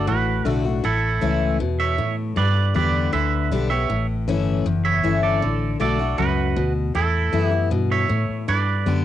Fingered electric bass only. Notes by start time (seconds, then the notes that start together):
0.07 A1
0.45 B1
0.84 A1
1.23 C#2
1.61 E2
1.99 A2
2.37 G2
2.75 E2
3.14 D2
3.52 B1
3.90 A1
4.28 G1
4.66 F#1
5.05 G1
5.42 A1
5.80 B1
6.19 C#2
6.57 D2
6.95 E2
7.33 F#2
7.72 G2
8.10 A2
8.29 muted fingered electric bass stroke
8.48 G2
8.86 F#2